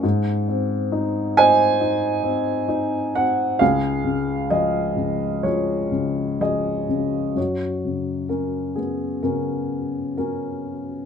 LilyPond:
<<
  \new Staff \with { instrumentName = "Upright piano" } { \time 4/4 \key des \major \tempo 4 = 65 r4. <c'' ees'' aes''>2 ges''8 | <aes' f''>4 <aes' ees''>4 <f' aes' des''>4 <aes' ees''>4 | \key fis \major <fis' cis''>4 <cis' ais'>8 <b gis'>8 <cis' ais'>4 <cis' ais'>4 | }
  \new Staff \with { instrumentName = "Upright piano" } { \clef bass \time 4/4 \key des \major aes,8 c'8 ees'8 c'8 ees'8 c'8 ees'8 c'8 | des,8 des8 f8 des8 f8 des8 f8 des8 | \key fis \major fis,8 cis4. cis2 | }
>>